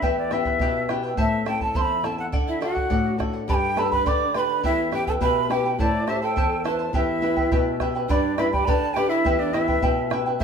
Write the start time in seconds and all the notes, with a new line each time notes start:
Already playing: E5
0.02 E2 E4 G4 B4 E5 G5, bombo low
0.19 D5
0.31 B3 E4 G4 B4 E5 G5, bombo rim
0.45 E4 B4 G5, bombo low
0.59 B2 E4 G4 B4 E5 G5, bombo low
0.89 B3 E4 G4 B4 E5 G5, bombo rim
1.03 E4 B4 G5
1.17 A2 E4 A4 C5 E5 A5, bombo low
1.45 C4 E4 A4 E5 G5 A5, bombo rim
1.60 E4 A4 A5, bombo low
1.75 E2 E4 A4 C5 E5 A5 C6, bombo low
1.82 B5
2.03 C4 E4 A4 E5 A5, bombo rim
2.18 E4 A4 F#5 A5
2.32 D3 A4 D5 F#5, bombo low
2.48 E4 E5
2.60 D4 F#4 A4 D5 F#5, bombo rim
2.75 D5 F#5, bombo low
2.90 A2 A4 D5 F#5, bombo low
3.18 D4 F#4 A4 D5 F#5, bombo rim, bombo low
3.33 D5 F#5
3.48 G2 G4 B4 D5 G5 A5 B5, bombo low
3.54 G5
3.76 D4 G4 A4 B4 D5 G5 A5 B5, bombo rim
3.92 B4 D5 B5, bombo low
4.06 D3 G4 B4 D5 G5 B5 D6, bombo low
4.34 D4 G4 B4 D5 G5 B5 C6, bombo rim
4.40 B5
4.49 B4 D5 B5
4.63 E2 E4 G4 B4 E5 G5, bombo low
4.91 E4 G4 B4 E5 G5, bombo rim
5.07 E4 A4 B4 G5 A5, bombo low
5.21 B2 E4 G4 B4 E5 G5 B5, bombo low
5.49 E4 G4 B4 E5 G5, bombo rim
5.65 E4 B4 G5
5.78 A2 E4 A4 C5 D5 E5 A5, bombo low
6.07 E4 G4 A4 C5 E5 A5, bombo rim
6.22 E4 A4 C5 G5 A5
6.36 E2 E4 A4 C5 E5 A5, bombo low
6.64 E4 A4 B4 C5 E5 A5, bombo rim
6.79 E4 C5 A5
6.93 E2 E4 G4 B4 E5 G5, bombo low
7.22 E4 G4 B4 E5 G5
7.37 E4 B4 G5, bombo low
7.51 B2 E4 G4 B4 E5 G5, bombo low
7.80 E4 G4 B4 E5 G5, bombo rim, bombo low
7.95 E4 B4 G5
8.08 G2 D4 G4 B4 D5 G5 B5, bombo low
8.38 D4 E4 G4 B4 D5 E5 G5 B5, bombo rim
8.52 G4 B4 D5 G5 B5, bombo low
8.66 D3 G4 B4 D5 G5 B5, bombo low
8.70 A5
8.94 D4 G4 B4 D5 G5 B5, bombo rim
9.09 E4 B4 D5 E5 B5
9.25 E2 E4 G4 B4 E5 G5, bombo low
9.39 D4 D5
9.53 E4 G4 B4 E5 G5, bombo rim
9.68 E4 B4 G5, bombo low
9.82 B2 E4 G4 B4 E5 G5, bombo low
10.10 E4 G4 B4 E5 G5, bombo rim
10.26 E4 B4 G5
10.40 A2 A4 C5 E5, bombo low